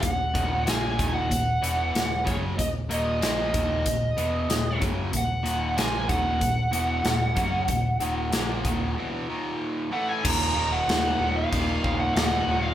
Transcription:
<<
  \new Staff \with { instrumentName = "Lead electric guitar" } { \time 4/4 \key ees \minor \tempo 4 = 94 ges''4 aes''8. ges''4.~ ges''16 des''8 | ees''8 ees''2. r8 | ges''4 aes''8 ges''2~ ges''8~ | ges''2. r8 ges''16 aes''16 |
bes''8. ges''4 f''4 ges''16 ges''8. f''16 | }
  \new Staff \with { instrumentName = "Overdriven electric guitar" } { \clef bass \time 4/4 \key ees \minor <ees, bes,>8 <ees, bes, ees>8 <bes, f bes>8 <ees, bes, ees>8 <ees, bes,>8 <fes, ces fes>8 <ees, bes,>8 <ges, des ges>8 | <ees, bes,>8 <ees, bes, ees>8 <bes, f bes>8 <ees, bes, ees>8 <ees, bes,>8 <fes, ces fes>8 <ees, bes,>8 <ges, des ges>8 | <ees, bes,>8 <ees, bes, ees>8 <bes, f bes>8 <ees, bes, ees>8 <ees, bes,>8 <fes, ces fes>8 <ees, bes,>8 <ges, des ges>8 | <ees, bes,>8 <ees, bes, ees>8 <bes, f bes>8 <ees, bes, ees>8 <fes, ces fes>8 <ees, bes, ees>4 <a, fes a>8 |
<ees, bes, ees>8 <ees, bes, ees>8 <ees, bes, ees>8 <ees, bes, ees>8 <ees, bes, ees>8 <ees, bes, ees>8 <ees, bes, ees>8 <ees, bes, ees>8 | }
  \new Staff \with { instrumentName = "Picked electric bass" } { \clef bass \time 4/4 \key ees \minor ees,,8 ees,,8 bes,,8 ees,,8 ees,,8 fes,,8 ees,,8 ges,,8 | ees,,8 ees,,8 bes,,8 ees,,8 ees,,8 fes,,8 ees,,8 ges,,8 | ees,,8 ees,,8 bes,,8 ees,,8 ees,,8 fes,,8 ees,,8 ges,,8 | ees,,8 ees,,8 bes,,8 ees,,8 r2 |
ees,,8 ees,,8 ees,8 ees,,8 ees,,8 ees,,8 ees,,8 ees,,8 | }
  \new DrumStaff \with { instrumentName = "Drums" } \drummode { \time 4/4 <hh bd>8 <hh bd>8 <hh sn>8 <hh bd>8 <hh bd>8 hh8 <hh sn>8 <hh bd>8 | <hh bd>8 hh8 <hh sn>8 <hh bd>8 <hh bd>8 hh8 <hh sn>8 <hh bd>8 | <hh bd>8 hh8 <hh sn>8 <hh bd>8 <hh bd>8 hh8 <hh sn>8 <hh bd>8 | <hh bd>8 hh8 <hh sn>8 <hh bd>8 r4 r4 |
<cymc bd>4 <cymc sn>4 <cymc bd>8 bd8 <cymc sn>4 | }
>>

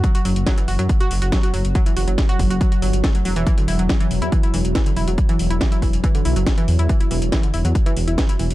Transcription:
<<
  \new Staff \with { instrumentName = "Ambient pad" } { \clef bass \time 4/4 \key e \dorian \tempo 4 = 140 fis1~ | fis1~ | fis1~ | fis1~ |
fis1 | }
  \new Staff \with { instrumentName = "Synth arpeggio sound" } { \clef bass \time 4/4 \key e \dorian fis16 fis'16 fis16 r16 fis16 e16 fis'16 fis16 r16 fis'16 r16 fis'16 fis16 fis'16 fis16 r16 | fis16 e16 fis'16 fis16 r16 fis'16 r16 fis'16 fis16 fis'16 fis16 r16 a16 fis16 fis16 e16 | e16 d16 e'16 fis16 r16 e16 r16 e'16 e16 e'16 e16 r16 e16 d16 e'16 fis16 | r16 e16 r16 e'16 e16 e'16 e16 r16 e16 d16 e'16 fis16 r16 e16 r16 e'16 |
e16 e'16 e16 r16 e16 d16 e'16 fis16 r16 e16 r16 e'16 e16 e'16 e16 r16 | }
  \new Staff \with { instrumentName = "Detuned saw bass" } { \clef bass \time 4/4 \key e \dorian r8 fis,,16 fis,,16 r8 fis,,16 fis,16 r8 fis,,16 fis,,16 r8 fis,,16 fis,,16 | r8 fis,,16 fis,,16 r8 fis,,16 fis,,16 r8 g,,16 g,,16 r8 e,,16 e,,16 | r8 e,,16 e,,16 r8 e,,16 e,16 r8 e,,16 e,,16 r8 e,,16 e,,16 | r8 e,,16 e,,16 r8 e,,16 e,,16 r8 b,,16 fis,,16 r8 e,16 e,16 |
r8 e,,16 e,,16 r8 e,,16 e,16 r8 e,,16 e,,16 r8 e,,16 e,,16 | }
  \new DrumStaff \with { instrumentName = "Drums" } \drummode { \time 4/4 <hh bd>16 hh16 hho16 hh16 <hh bd sn>16 hh16 hho16 hh16 <hh bd>16 hh16 hho16 hh16 <hh bd sn>16 hh16 hho16 hh16 | <hh bd>16 hh16 hho16 hh16 <hh bd sn>16 hh16 <hho bd>16 hh16 <hh bd>16 hh16 hho16 hh16 <hh bd sn>16 hh16 hho16 hh16 | <hh bd>16 hh16 hho16 hh16 <hh bd sn>16 hh16 hho16 hh16 <hh bd>16 hh16 hho16 hh16 <hh bd sn>16 hh16 hho16 hh16 | <hh bd>16 hh16 hho16 hh16 <hh bd sn>16 hh16 <hho bd>16 hh16 <hh bd>16 hh16 hho16 hh16 <hh bd sn>16 hh16 hho16 hh16 |
<hh bd>16 hh16 hho16 hh16 <hh bd sn>16 hh16 hho16 hh16 <hh bd>16 hh16 hho16 hh16 <hh bd sn>16 hh16 hho16 hh16 | }
>>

